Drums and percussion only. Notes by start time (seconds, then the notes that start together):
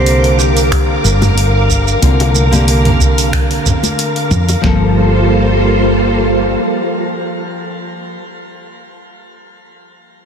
0.06 open hi-hat, shaker
0.24 open hi-hat
0.39 shaker
0.57 open hi-hat, shaker
0.72 finger snap, kick, open hi-hat, shaker
1.05 shaker
1.22 mid tom, open hi-hat, high bongo, high conga, shaker
1.38 open hi-hat, shaker
1.70 kick, shaker
1.88 shaker
2.02 kick, open hi-hat, shaker
2.20 open hi-hat, high bongo
2.35 high conga, shaker
2.53 open hi-hat, shaker
2.68 open hi-hat, shaker
2.85 mid tom, open hi-hat
3.01 kick, shaker
3.18 open hi-hat, shaker
3.33 finger snap, kick, open hi-hat, shaker
3.51 open hi-hat
3.66 kick, mid tom, shaker
3.83 open hi-hat, high conga, shaker
3.99 open hi-hat, shaker
4.16 open hi-hat
4.31 mid tom, shaker
4.49 open hi-hat, high bongo, shaker
4.64 kick, snare